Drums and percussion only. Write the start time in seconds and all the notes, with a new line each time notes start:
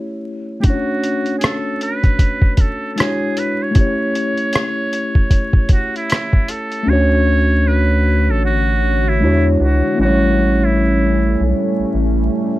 0.63 kick, closed hi-hat
1.04 closed hi-hat
1.26 closed hi-hat
1.41 cross-stick, closed hi-hat
1.81 closed hi-hat
2.04 kick, closed hi-hat
2.19 kick, closed hi-hat
2.42 kick
2.57 kick, closed hi-hat
2.98 cross-stick, closed hi-hat
3.37 closed hi-hat
3.75 kick, closed hi-hat
4.15 closed hi-hat
4.37 closed hi-hat
4.53 cross-stick, closed hi-hat
4.93 closed hi-hat
5.15 kick
5.31 kick, closed hi-hat
5.53 kick
5.69 kick, closed hi-hat
5.96 closed hi-hat
6.10 cross-stick, closed hi-hat
6.33 kick
6.48 closed hi-hat
6.72 closed hi-hat